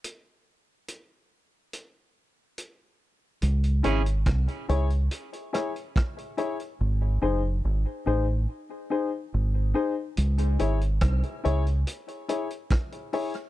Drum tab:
HH |x---x---x---x---|xxxxxxxxxxxxxxxx|----------------|xxxxxxxxxxxxxxox|
SD |----------------|----r-----r-r---|----------------|----r-------r---|
BD |----------------|----o-------o---|----------------|----o-------o---|